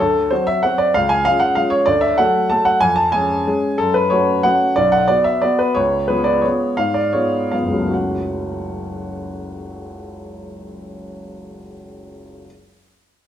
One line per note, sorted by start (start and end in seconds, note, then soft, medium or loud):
0.00 0.30 D2 medium
0.00 0.31 A4 medium
0.31 0.60 F#3 soft
0.31 0.60 C4 soft
0.31 0.61 F#4 soft
0.31 0.46 C5 medium
0.47 0.63 E5 medium
0.63 0.92 F#3 soft
0.63 0.92 C4 soft
0.63 0.93 F#4 soft
0.63 0.79 F#5 medium
0.78 0.94 D5 medium
0.94 1.25 C#2 medium
0.94 1.10 F5 loud
1.09 1.25 G#5 loud
1.25 1.53 G#3 soft
1.25 1.53 C#4 soft
1.25 1.53 F4 medium
1.25 1.40 F5 loud
1.40 1.55 F#5 medium
1.55 1.84 G#3 soft
1.55 1.84 C#4 soft
1.55 1.84 F4 soft
1.55 1.71 F5 medium
1.70 1.86 C#5 medium
1.86 2.17 D2 medium
1.86 2.01 D5 medium
2.01 2.17 E5 medium
2.18 2.48 F#3 soft
2.18 2.48 A3 soft
2.18 2.48 A4 medium
2.18 2.50 F#5 medium
2.50 2.79 F#3 soft
2.50 2.79 A3 soft
2.50 2.79 A4 medium
2.50 2.66 A5 medium
2.65 2.81 F#5 medium
2.81 3.13 F2 medium
2.81 2.97 G#5 loud
2.96 3.13 A5 medium
3.12 3.43 G#3 soft
3.12 3.44 C#4 soft
3.12 3.44 G#4 medium
3.12 3.79 G#5 loud
3.47 3.77 G#3 soft
3.47 3.77 C#4 soft
3.47 3.77 G#4 soft
3.78 4.11 F#2 medium
3.78 3.95 A4 medium
3.94 4.11 B4 medium
4.10 4.42 A3 soft
4.10 4.42 C#4 soft
4.10 4.42 F#4 medium
4.10 4.44 C#5 medium
4.43 4.74 A3 soft
4.43 4.74 C#4 soft
4.43 4.74 F#4 medium
4.43 4.76 F#5 medium
4.76 5.08 B1 medium
4.76 4.92 D5 medium
4.92 5.09 F#5 medium
5.08 5.39 B3 soft
5.08 5.40 F#4 soft
5.08 5.25 D5 medium
5.24 5.42 E5 medium
5.42 5.73 B3 soft
5.42 5.73 F#4 soft
5.42 5.59 D5 medium
5.59 5.76 B4 medium
5.75 6.08 C#2 medium
5.75 6.08 C#5 medium
6.08 6.40 G#3 soft
6.08 6.40 B3 soft
6.08 6.40 F4 soft
6.08 6.25 B4 medium
6.24 6.42 D5 medium
6.42 6.75 G#3 soft
6.42 6.75 B3 soft
6.42 6.75 F4 soft
6.42 6.77 C#5 medium
6.77 7.13 G#2 medium
6.77 6.95 F5 medium
6.94 7.13 D5 medium
7.13 7.49 G#3 soft
7.13 7.49 B3 soft
7.13 7.49 F4 soft
7.13 7.52 C#5 medium
7.51 7.91 G#3 soft
7.51 7.91 B3 soft
7.51 7.91 F4 soft
7.51 7.94 F5 medium
7.62 11.57 F#1 soft
7.68 11.60 C#2 soft
7.73 11.63 F#3 soft
7.79 11.65 A3 soft
7.84 11.68 C#4 soft
7.90 11.71 F#4 soft
7.90 11.73 F#5 soft